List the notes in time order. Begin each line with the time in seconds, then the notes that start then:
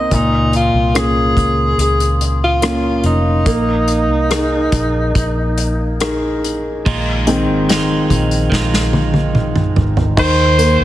Already playing: A#3 C4 D#4 D#5
0.11 C#2 A#2 D#4, kick, closed hi-hat
0.53 F4, closed hi-hat
0.74 C2
0.95 A#3 C#4 F4 G#4, cross-stick, closed hi-hat
1.37 C#2, kick, closed hi-hat
1.78 C#2 G#4, closed hi-hat
2.00 closed hi-hat
2.21 closed hi-hat
2.44 F4
2.62 A#3 C#4 F4, cross-stick, closed hi-hat
3.04 F1 D#4, closed hi-hat
3.46 A#1 A#3, kick, closed hi-hat
3.88 closed hi-hat
4.09 C2
4.30 D#4 G#4 A#4, cross-stick, closed hi-hat
4.72 A#1, kick, closed hi-hat
5.15 A#1, kick, closed hi-hat
5.58 closed hi-hat
6.00 D#4 G#4 A#4, cross-stick, closed hi-hat
6.44 closed hi-hat
6.86 A#1 A#2 D#3 G#3 D#4 F4, kick, crash
7.27 D#3 G#3 C4, closed hi-hat
7.48 G#1
7.69 D#3 G#3 D#4 F4, snare, closed hi-hat
8.10 A#1, kick, closed hi-hat
8.31 closed hi-hat
8.50 A#1 D#3 G#3, kick, snare
8.54 D#4 F4
8.74 snare
8.93 high tom
9.14 high tom
9.35 mid tom
9.56 mid tom
9.76 G#1, floor tom
9.97 floor tom
10.17 D#2 D#3 C5, kick, crash
10.58 A#3, closed hi-hat
10.81 C#2